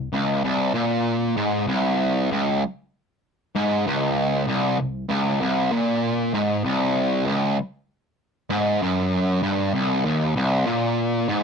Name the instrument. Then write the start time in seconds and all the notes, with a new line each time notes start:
distorted electric guitar
0.13 C#2
0.44 C2
0.74 A#2
1.36 G#2
1.67 C2
2.31 C#2
3.55 G#2
3.87 C#2
4.48 C2
4.80 C2
5.09 C#2
5.41 C2
5.72 A#2
6.34 G#2
6.64 C2
7.26 C#2
8.50 G#2
8.82 F#2
9.43 G2
9.74 C2
10.05 D#2
10.36 C2
10.66 A#2
11.29 G#2